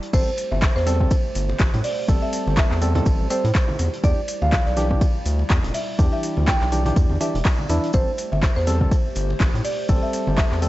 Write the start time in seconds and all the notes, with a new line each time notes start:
0.02 closed hi-hat
0.13 A1 G3 A3 C4 G4 A4 C5, kick, ride, crash, shaker
0.37 open hi-hat, shaker
0.52 G1 E5, high conga
0.62 kick, snare, clap, ride, shaker
0.76 E2 C5, snare
0.86 G3 C4 A4, snare, open hi-hat, muted conga, shaker
1.00 G3 C4 A4, kick, high conga, low conga
1.11 kick, ride, shaker
1.35 G1, open hi-hat, shaker
1.49 muted conga
1.59 A1, kick, snare, clap, ride, shaker
1.73 A2, closed hi-hat, low conga
1.84 D5, open hi-hat
2.08 A1 G3 C4 A4, kick, ride, shaker
2.22 E5
2.33 open hi-hat, shaker
2.47 G1, high conga
2.57 E5, kick, snare, clap, ride, shaker
2.71 E2, snare, clap
2.82 G3 C4 A4, open hi-hat, muted conga, shaker
2.95 G3 C4 A4, closed hi-hat, high conga, low conga
3.06 A1, kick, ride, shaker
3.20 A1
3.30 G3 C4 A4 C5, open hi-hat, shaker
3.44 A2, closed hi-hat
3.55 kick, snare, clap, ride, shaker
3.68 high conga, low conga
3.79 E2 G3 E4 D5, open hi-hat, muted conga, shaker
3.93 closed hi-hat
4.03 E2 E3 D4 G4 D5, kick, ride, shaker
4.28 open hi-hat, shaker
4.42 D2 F5, high conga
4.52 kick, snare, clap, ride, shaker
4.66 B1 D5, snare
4.76 E3 D4 G4, snare, open hi-hat, muted conga, shaker
4.90 E3 D4 G4, kick, high conga, low conga
5.01 kick, ride, shaker
5.26 D2, open hi-hat, shaker
5.39 muted conga
5.49 E2, kick, snare, clap, ride, shaker
5.63 E1, closed hi-hat, low conga
5.74 E5, open hi-hat
5.98 E2 E3 D4 G4, kick, ride, shaker
6.13 E5
6.23 open hi-hat, shaker
6.37 D2, high conga
6.47 G5, kick, snare, clap, ride, shaker
6.61 B1, snare, clap
6.72 E3 D4 G4, open hi-hat, muted conga, shaker
6.85 E3 D4 G4, closed hi-hat, high conga, low conga
6.96 E2, kick, ride, shaker
7.09 E2, high conga
7.21 E3 D4 G4 E5, open hi-hat, shaker
7.35 E1, closed hi-hat
7.45 kick, snare, clap, ride, shaker
7.59 high conga, low conga
7.69 E2 E3 D4 E4, open hi-hat, muted conga, shaker
7.83 closed hi-hat
7.93 A1 G3 A3 C4 G4 A4 C5, kick, ride, shaker
8.18 open hi-hat, shaker
8.32 G1 E5, high conga
8.43 kick, snare, clap, ride, shaker
8.56 E2 C5, snare
8.67 G3 C4 A4, snare, open hi-hat, muted conga, shaker
8.81 G3 C4 A4, kick, high conga, low conga
8.91 kick, ride, shaker
9.15 G1, open hi-hat, shaker
9.30 muted conga
9.40 A1, kick, snare, clap, ride, shaker
9.54 A2, closed hi-hat, low conga
9.65 D5, open hi-hat
9.89 A1 G3 C4 A4, kick, ride, shaker
10.03 E5
10.13 open hi-hat, shaker
10.27 G1, high conga
10.38 E5, kick, snare, clap, ride, shaker
10.52 E2, snare, clap
10.62 G3 C4 A4, open hi-hat, muted conga, shaker